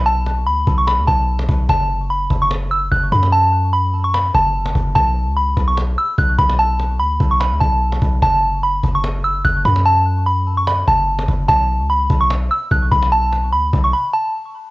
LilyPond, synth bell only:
\new Staff \with { instrumentName = "Synth bell" } { \time 4/4 \key b \dorian \tempo 4 = 147 a''4 b''8. cis'''16 b''8 a''4. | a''4 b''8. cis'''16 r8 e'''8 fis'''8 b''8 | a''4 b''8. cis'''16 b''8 a''4. | a''4 b''8. cis'''16 r8 e'''8 fis'''8 b''8 |
a''4 b''8. cis'''16 b''8 a''4. | a''4 b''8. cis'''16 r8 e'''8 fis'''8 b''8 | a''4 b''8. cis'''16 b''8 a''4. | a''4 b''8. cis'''16 r8 e'''8 fis'''8 b''8 |
a''4 b''8. cis'''16 b''8 a''4. | }